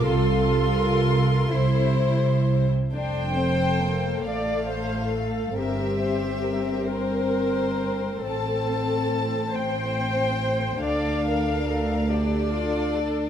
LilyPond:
<<
  \new Staff \with { instrumentName = "Violin section" } { \time 6/8 \key f \major \tempo 4. = 46 c'''2~ c'''8 r8 | g''4. f''4. | e''4. c''4. | a''4. g''4. |
f''4. d''4. | }
  \new Staff \with { instrumentName = "Viola section" } { \time 6/8 \key f \major a'2~ a'16 r8. | c''4. d''8 c''8 a'8 | g'4. bes'4. | a'4. c''4. |
d''8 bes'8 a'8 g'8 f'8 a'8 | }
  \new Staff \with { instrumentName = "Violin section" } { \time 6/8 \key f \major << { a'8. bes'8. c''4~ c''16 r16 | a'2. | bes'8 c''8 bes'2 | a'4. c''4. |
a'8 a'8 bes'8 a'4. | } \\ { f'4. e'4~ e'16 r16 | d'8 c'8 bes8 a4. | c'2. | c'4. c'4. |
d'4. d'4. | } >> }
  \new Staff \with { instrumentName = "Cello section" } { \clef bass \time 6/8 \key f \major c4. c4~ c16 r16 | f,4. a,4. | g,2. | a,2. |
d,2. | }
  \new Staff \with { instrumentName = "Double bass section" } { \clef bass \time 6/8 \key f \major c,4. c,4~ c,16 r16 | f,,4. a,,4. | g,,2. | a,,2. |
d,2. | }
>>